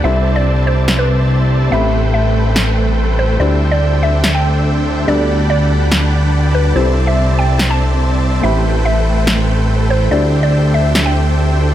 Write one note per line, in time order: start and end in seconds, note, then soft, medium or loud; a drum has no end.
0.00 1.68 G3 medium
0.00 1.69 C4 medium
0.00 1.69 D4 medium
0.04 1.70 C2 medium
0.04 1.70 C3 medium
0.04 1.70 G3 medium
0.04 5.04 A3 medium
0.04 1.69 C4 medium
0.04 1.70 E4 medium
0.04 1.71 A4 medium
0.04 1.70 C5 medium
0.04 1.69 D5 medium
0.04 0.29 E5 medium
0.04 1.69 E5 medium
0.04 1.69 A5 medium
0.36 0.61 D5 medium
0.67 0.92 C5 medium
0.88 snare loud
0.99 1.64 B4 medium
1.70 3.38 A1 medium
1.70 6.72 G3 medium
1.70 3.36 A3 medium
1.70 3.37 A3 medium
1.70 3.37 C4 medium
1.70 5.04 C4 medium
1.70 3.38 G4 medium
1.70 3.37 A4 medium
1.70 3.37 B4 medium
1.70 3.37 C5 medium
1.70 2.06 E5 medium
1.70 3.37 G5 medium
1.74 3.38 B5 medium
2.14 2.48 E5 medium
2.56 snare loud
3.19 3.36 C5 medium
3.38 5.06 D2 medium
3.38 6.72 D3 medium
3.38 5.04 G3 medium
3.38 5.05 D4 medium
3.38 5.06 E4 medium
3.38 5.05 E4 medium
3.38 5.05 A4 medium
3.38 5.05 C5 medium
3.38 3.65 D5 medium
3.38 5.05 E5 medium
3.38 5.05 G5 medium
3.42 5.06 C5 medium
3.71 3.97 D5 medium
4.03 4.28 E5 medium
4.24 snare loud
4.35 5.00 G5 medium
5.06 6.73 D2 medium
5.06 6.72 G3 medium
5.06 6.73 B3 medium
5.06 8.40 D4 medium
5.06 6.73 D4 medium
5.06 6.74 A4 medium
5.06 6.74 B4 medium
5.06 6.73 D5 medium
5.06 5.42 D5 loud
5.06 6.73 F#5 medium
5.06 6.73 G5 medium
5.06 6.73 A5 medium
5.06 6.73 B5 medium
5.50 5.83 D5 medium
5.92 snare loud
6.55 6.71 B4 medium
6.73 8.41 C2 medium
6.73 8.42 C3 medium
6.73 8.40 G3 medium
6.73 8.42 G3 medium
6.73 11.74 A3 medium
6.73 8.40 C4 medium
6.73 8.41 C4 medium
6.73 8.42 E4 medium
6.73 8.41 E4 medium
6.73 8.41 C5 medium
6.73 7.01 C5 medium
6.73 8.41 D5 medium
6.73 8.41 E5 medium
6.73 8.41 A5 medium
6.77 8.42 A4 medium
7.07 7.32 E5 medium
7.39 7.64 G5 medium
7.59 snare loud
7.70 8.35 A5 medium
8.41 10.09 A1 medium
8.41 10.08 A3 medium
8.41 10.09 A3 medium
8.41 10.08 C4 medium
8.41 11.74 C4 medium
8.41 11.74 G4 medium
8.41 10.09 G4 medium
8.41 10.09 A4 medium
8.41 10.09 B4 medium
8.41 10.09 C5 medium
8.41 8.77 E5 medium
8.41 10.09 G5 medium
8.41 10.10 B5 medium
8.85 9.19 E5 medium
9.27 snare loud
9.90 10.07 C5 medium
10.09 11.74 D2 medium
10.09 11.74 D3 medium
10.09 11.74 G3 medium
10.09 11.74 D4 medium
10.09 11.74 E4 medium
10.09 11.74 A4 medium
10.09 11.74 C5 medium
10.09 10.36 D5 medium
10.09 11.74 E5 medium
10.09 11.74 G5 medium
10.13 11.74 C5 medium
10.43 10.68 D5 medium
10.74 10.99 E5 medium
10.95 snare loud
11.06 11.71 G5 medium